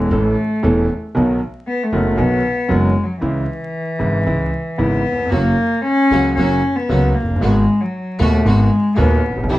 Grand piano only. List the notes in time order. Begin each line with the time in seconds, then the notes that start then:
0.11 A1 A2 E3 A3 C#4 A4
0.63 E1 E2 E3 A3 C#4 A4
1.15 B1 B2 D#3 F#3 B3 F#4
1.93 F#1 F#2 D#3 F#3 B3 F#4
2.17 B1 B2 D#3 F#3 B3 F#4
2.68 F#1 F#2 D#3 F#3 B3 F#4
3.21 C#2 C#3 E3 G#3 E4
3.99 G#1 G#2 C#3 E3 G#3 E4
4.25 C#2 C#3 E3 G#3 E4
4.78 G#1 G#2 C#3 E3 G#3 E4
5.12 D#2
5.18 E2
5.25 F2
5.32 F#2 C#3 F#3 A#3 F#4
6.12 C#2 C#3 F#3 A#3 F#4
6.38 F#2 C#3 F#3 A#3 F#4
6.89 C#2 C#3 F#3 A#3 F#4
7.23 F1
7.28 F#1
7.36 G1
7.41 G#1 G#2 D#3 G#3 B3 F#4
8.19 D#1 D#2 D#3 G#3 B3 F#4
8.45 G#1 G#2 D#3 G#3 B3 F#4
8.96 D#1 D#2 D#3 G#3 B3 F#4
9.30 A1
9.37 A#1
9.43 B1
9.49 C2 C3 E3 G3 C4 G4